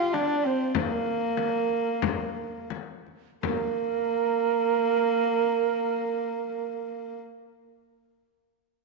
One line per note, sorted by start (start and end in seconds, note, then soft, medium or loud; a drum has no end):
0.00 0.15 F4 loud
0.00 0.17 F5 medium
0.14 0.47 D4 medium
0.14 0.48 D5 medium
0.14 frame drum medium
0.45 0.78 C4 medium
0.45 0.75 C5 medium
0.45 frame drum soft
0.75 2.72 A#3 medium
0.75 0.94 B4 medium
0.75 frame drum medium
0.94 2.68 A#4 medium
1.37 frame drum medium
1.69 frame drum soft
2.02 frame drum medium
2.36 frame drum soft
2.70 frame drum medium
3.06 frame drum soft
3.42 7.20 A#3 medium
3.42 7.19 A#4 medium
3.42 frame drum medium